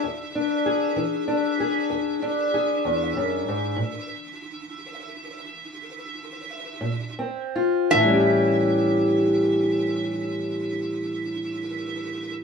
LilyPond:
<<
  \new Staff \with { instrumentName = "Resonator guitar played with a steel bar" } { \time 12/8 \key a \mixolydian \tempo 4. = 59 e''1.~ | e''1~ e''4 r4 | e''1. | }
  \new Staff \with { instrumentName = "Steel-string acoustic guitar" } { \clef bass \time 12/8 \key a \mixolydian << { r8 d'8 gis'4 d'8 gis'4 d'8 gis'2 | r1 r4 c'8 f'8 | <e g cis' g'>1. | } \\ { e,4 r8 e4 r8 e,4 r8 e,8 fis,8 gis,8 | a,4 r2. r8 bes,4 r8 | a,1. | } >> }
>>